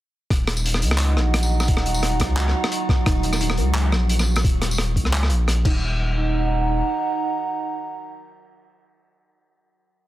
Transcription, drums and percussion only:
0.30 kick, cross-stick, closed hi-hat
0.47 cross-stick, closed hi-hat
0.57 tambourine
0.66 closed hi-hat
0.74 cross-stick, tambourine
0.82 closed hi-hat
0.91 cross-stick
0.98 clap, closed hi-hat
1.17 cross-stick
1.34 cross-stick, closed hi-hat
1.43 tambourine
1.60 cross-stick, tambourine
1.68 kick, closed hi-hat
1.77 cross-stick
1.86 closed hi-hat
1.94 tambourine
2.03 cross-stick, closed hi-hat
2.20 kick, cross-stick, closed hi-hat
2.37 clap, closed hi-hat
2.48 cross-stick
2.64 cross-stick
2.72 closed hi-hat
2.89 kick, cross-stick
3.06 kick, cross-stick, closed hi-hat
3.23 closed hi-hat
3.33 cross-stick, tambourine
3.41 closed hi-hat
3.50 cross-stick, tambourine
3.58 closed hi-hat
3.74 cross-stick, clap, closed hi-hat
3.92 cross-stick
4.09 closed hi-hat
4.19 cross-stick, tambourine
4.36 cross-stick, tambourine
4.44 kick, closed hi-hat
4.62 cross-stick, closed hi-hat
4.71 tambourine
4.78 cross-stick, closed hi-hat
4.96 kick, closed hi-hat
5.05 cross-stick
5.13 clap, closed hi-hat
5.23 cross-stick
5.30 closed hi-hat
5.48 cross-stick, closed hi-hat
5.65 kick, crash

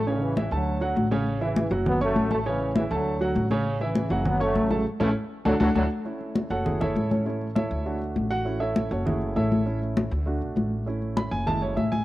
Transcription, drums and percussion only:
0.07 high conga
0.22 high conga
0.37 high conga
0.52 high conga
0.67 high conga
0.82 high conga
0.97 high conga
1.12 high conga
1.27 high conga
1.42 high conga
1.56 high conga
1.71 high conga
1.86 high conga, low conga
2.01 high conga
2.16 high conga
2.31 high conga
2.46 high conga
2.61 high conga
2.76 high conga
2.91 high conga
3.06 high conga
3.21 high conga
3.36 high conga
3.51 high conga
3.65 high conga
3.80 high conga
3.95 high conga
4.11 high conga
4.26 high conga, low conga
4.40 high conga
4.56 high conga
4.71 high conga
5.01 high conga
5.46 high conga
5.61 high conga
5.76 high conga
6.06 high conga
6.21 high conga
6.35 high conga
6.51 high conga
6.66 high conga, low conga
6.81 high conga, low conga
6.96 high conga
7.11 high conga
7.26 high conga
7.41 high conga
7.56 high conga
7.71 high conga
7.86 high conga
8.02 high conga
8.16 high conga
8.46 high conga
8.61 high conga
8.76 high conga
8.92 high conga
9.07 high conga, low conga
9.22 high conga
9.37 high conga
9.52 high conga
9.67 high conga
9.82 high conga
9.97 high conga
10.12 high conga
10.27 high conga
10.42 high conga
10.57 high conga
10.87 high conga
11.02 high conga
11.17 high conga
11.32 high conga
11.47 high conga, low conga
11.62 high conga
11.77 high conga
11.92 high conga

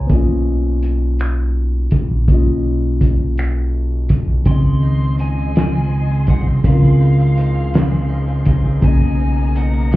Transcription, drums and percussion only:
0.09 kick, closed hi-hat
0.82 closed hi-hat
1.19 finger snap, closed hi-hat
1.91 kick, closed hi-hat
2.28 kick, closed hi-hat
3.01 kick, closed hi-hat
3.38 finger snap, closed hi-hat
4.09 kick, closed hi-hat
4.45 kick, closed hi-hat
5.19 closed hi-hat
5.55 snare, closed hi-hat
6.27 kick, closed hi-hat
6.64 kick, closed hi-hat
7.37 closed hi-hat
7.74 snare, closed hi-hat
8.45 kick, closed hi-hat
8.82 kick, closed hi-hat
9.56 closed hi-hat
9.92 closed hi-hat

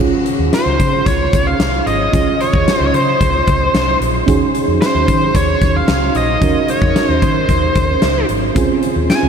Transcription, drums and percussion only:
0.26 closed hi-hat
0.53 snare, closed hi-hat
0.80 kick, closed hi-hat
1.06 kick, closed hi-hat
1.33 kick, closed hi-hat
1.60 snare, closed hi-hat
1.87 closed hi-hat
2.13 kick, closed hi-hat
2.41 closed hi-hat
2.53 kick
2.68 snare, closed hi-hat
2.94 closed hi-hat
3.21 kick, closed hi-hat
3.47 kick, closed hi-hat
3.75 snare, closed hi-hat
4.02 closed hi-hat
4.28 kick, closed hi-hat
4.55 closed hi-hat
4.82 snare, closed hi-hat
5.08 kick, closed hi-hat
5.35 kick, closed hi-hat
5.61 kick, closed hi-hat
5.88 snare, closed hi-hat
6.15 closed hi-hat
6.42 kick, closed hi-hat
6.68 closed hi-hat
6.82 kick
6.96 snare, closed hi-hat
7.22 kick, closed hi-hat
7.49 kick, closed hi-hat
7.75 kick, closed hi-hat
8.02 snare, closed hi-hat
8.29 closed hi-hat
8.56 kick, closed hi-hat
8.83 closed hi-hat
9.10 snare, closed hi-hat

